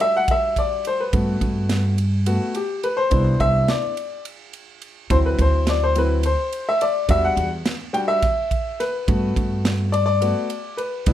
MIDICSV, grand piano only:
0, 0, Header, 1, 2, 480
1, 0, Start_track
1, 0, Key_signature, 1, "major"
1, 0, Tempo, 568182
1, 955, Time_signature, 7, 3, 24, 8
1, 9403, End_track
2, 0, Start_track
2, 0, Title_t, "Grand piano"
2, 0, Program_c, 0, 0
2, 0, Note_on_c, 0, 55, 50
2, 0, Note_on_c, 0, 62, 45
2, 0, Note_on_c, 0, 66, 62
2, 9, Note_on_c, 0, 76, 93
2, 125, Note_off_c, 0, 76, 0
2, 140, Note_on_c, 0, 78, 93
2, 251, Note_off_c, 0, 78, 0
2, 264, Note_on_c, 0, 76, 82
2, 495, Note_on_c, 0, 74, 83
2, 496, Note_off_c, 0, 76, 0
2, 732, Note_off_c, 0, 74, 0
2, 738, Note_on_c, 0, 72, 84
2, 848, Note_on_c, 0, 71, 70
2, 850, Note_off_c, 0, 72, 0
2, 918, Note_off_c, 0, 55, 0
2, 920, Note_off_c, 0, 62, 0
2, 923, Note_off_c, 0, 66, 0
2, 954, Note_on_c, 0, 57, 50
2, 958, Note_on_c, 0, 59, 44
2, 964, Note_on_c, 0, 66, 54
2, 1528, Note_off_c, 0, 71, 0
2, 1641, Note_off_c, 0, 57, 0
2, 1643, Note_off_c, 0, 59, 0
2, 1646, Note_off_c, 0, 66, 0
2, 1913, Note_on_c, 0, 57, 49
2, 1913, Note_on_c, 0, 59, 43
2, 1913, Note_on_c, 0, 66, 76
2, 2130, Note_off_c, 0, 57, 0
2, 2130, Note_off_c, 0, 59, 0
2, 2132, Note_off_c, 0, 66, 0
2, 2158, Note_on_c, 0, 67, 77
2, 2397, Note_on_c, 0, 71, 86
2, 2404, Note_off_c, 0, 67, 0
2, 2508, Note_on_c, 0, 72, 95
2, 2520, Note_off_c, 0, 71, 0
2, 2619, Note_on_c, 0, 59, 53
2, 2630, Note_on_c, 0, 62, 47
2, 2631, Note_on_c, 0, 64, 54
2, 2876, Note_on_c, 0, 76, 100
2, 2882, Note_off_c, 0, 72, 0
2, 3099, Note_off_c, 0, 76, 0
2, 3121, Note_on_c, 0, 74, 92
2, 3313, Note_off_c, 0, 59, 0
2, 3319, Note_off_c, 0, 62, 0
2, 3319, Note_off_c, 0, 64, 0
2, 3564, Note_off_c, 0, 74, 0
2, 4307, Note_on_c, 0, 54, 55
2, 4309, Note_on_c, 0, 60, 51
2, 4315, Note_on_c, 0, 64, 61
2, 4315, Note_on_c, 0, 72, 86
2, 4358, Note_off_c, 0, 72, 0
2, 4442, Note_on_c, 0, 71, 78
2, 4562, Note_off_c, 0, 71, 0
2, 4574, Note_on_c, 0, 72, 81
2, 4788, Note_off_c, 0, 72, 0
2, 4809, Note_on_c, 0, 74, 88
2, 4925, Note_off_c, 0, 74, 0
2, 4930, Note_on_c, 0, 72, 88
2, 4997, Note_off_c, 0, 54, 0
2, 4998, Note_off_c, 0, 60, 0
2, 5001, Note_off_c, 0, 64, 0
2, 5032, Note_on_c, 0, 54, 50
2, 5034, Note_off_c, 0, 72, 0
2, 5034, Note_on_c, 0, 60, 45
2, 5042, Note_on_c, 0, 64, 50
2, 5054, Note_on_c, 0, 71, 82
2, 5249, Note_off_c, 0, 54, 0
2, 5250, Note_off_c, 0, 60, 0
2, 5255, Note_off_c, 0, 64, 0
2, 5268, Note_off_c, 0, 71, 0
2, 5286, Note_on_c, 0, 72, 80
2, 5615, Note_off_c, 0, 72, 0
2, 5648, Note_on_c, 0, 76, 87
2, 5760, Note_on_c, 0, 74, 97
2, 5765, Note_off_c, 0, 76, 0
2, 5985, Note_on_c, 0, 55, 52
2, 5992, Note_on_c, 0, 62, 46
2, 5993, Note_on_c, 0, 66, 63
2, 6003, Note_on_c, 0, 76, 94
2, 6004, Note_off_c, 0, 74, 0
2, 6122, Note_off_c, 0, 76, 0
2, 6122, Note_on_c, 0, 78, 93
2, 6308, Note_off_c, 0, 55, 0
2, 6312, Note_off_c, 0, 62, 0
2, 6313, Note_off_c, 0, 66, 0
2, 6341, Note_off_c, 0, 78, 0
2, 6700, Note_on_c, 0, 55, 49
2, 6704, Note_on_c, 0, 62, 48
2, 6705, Note_on_c, 0, 66, 53
2, 6706, Note_on_c, 0, 79, 93
2, 6748, Note_off_c, 0, 79, 0
2, 6825, Note_on_c, 0, 76, 93
2, 6922, Note_off_c, 0, 55, 0
2, 6924, Note_off_c, 0, 62, 0
2, 6925, Note_off_c, 0, 66, 0
2, 7434, Note_on_c, 0, 71, 81
2, 7447, Note_off_c, 0, 76, 0
2, 7667, Note_on_c, 0, 57, 50
2, 7671, Note_on_c, 0, 59, 43
2, 7674, Note_on_c, 0, 66, 59
2, 7879, Note_off_c, 0, 71, 0
2, 8355, Note_off_c, 0, 57, 0
2, 8357, Note_off_c, 0, 59, 0
2, 8359, Note_off_c, 0, 66, 0
2, 8383, Note_on_c, 0, 74, 102
2, 8484, Note_off_c, 0, 74, 0
2, 8497, Note_on_c, 0, 74, 106
2, 8625, Note_on_c, 0, 57, 47
2, 8625, Note_on_c, 0, 59, 46
2, 8631, Note_on_c, 0, 66, 55
2, 8843, Note_off_c, 0, 59, 0
2, 8844, Note_off_c, 0, 57, 0
2, 8847, Note_off_c, 0, 66, 0
2, 9102, Note_on_c, 0, 71, 80
2, 9122, Note_off_c, 0, 74, 0
2, 9347, Note_on_c, 0, 59, 58
2, 9352, Note_on_c, 0, 62, 50
2, 9358, Note_on_c, 0, 64, 62
2, 9403, Note_off_c, 0, 59, 0
2, 9403, Note_off_c, 0, 62, 0
2, 9403, Note_off_c, 0, 64, 0
2, 9403, Note_off_c, 0, 71, 0
2, 9403, End_track
0, 0, End_of_file